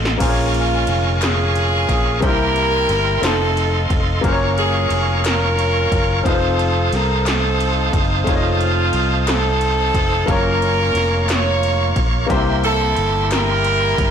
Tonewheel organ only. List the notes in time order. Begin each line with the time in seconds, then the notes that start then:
Already playing: A4 D#5 F5 C6
0.21 A#4 F5 G#5 C#6
2.23 A#4 E5 G5 C6
3.24 A4 F5 C6
4.25 A#4 C#5 C#6
6.25 C5 A5 D#6
10.27 A#3 C#5 C#6
12.31 E5 G5 C6